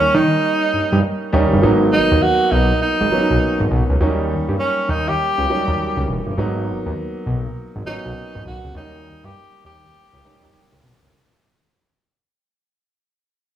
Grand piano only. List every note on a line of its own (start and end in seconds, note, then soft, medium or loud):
0.00 0.13 G3 medium
0.00 0.13 A#3 medium
0.00 0.14 C#4 medium
0.00 0.14 D#4 medium
1.33 1.57 G3 loud
1.33 1.57 A#3 medium
1.33 1.57 C#4 medium
1.33 1.57 D#4 loud
1.62 2.51 F#3 medium
1.62 2.51 A#3 medium
1.62 2.51 B3 medium
1.62 2.51 D#4 loud
3.11 3.79 F#3 medium
3.11 3.79 A#3 medium
3.11 3.80 B3 medium
3.11 3.20 C#4 medium
3.19 3.83 D#4 medium
4.00 4.08 F#3 medium
4.00 4.89 A#3 medium
4.00 4.89 C#4 medium
4.00 4.89 D#4 medium
4.07 4.92 G3 medium
5.49 5.57 F#3 medium
5.49 6.17 A#3 medium
5.49 6.17 C#4 medium
5.49 6.18 D#4 medium
5.56 6.20 G3 medium
6.38 7.26 F#3 medium
6.38 7.26 A#3 medium
6.38 7.26 B3 medium
6.38 7.27 D#4 loud
7.87 8.54 F#3 medium
7.87 8.55 A#3 medium
7.87 8.55 B3 medium
7.87 8.55 C#4 medium
8.75 9.64 G3 medium
8.75 9.64 A#3 medium
8.75 9.64 C#4 medium
8.75 9.64 D#4 medium
10.24 10.92 G3 medium
10.24 10.92 A#3 medium
10.24 10.92 C#4 medium
10.24 10.93 D#4 medium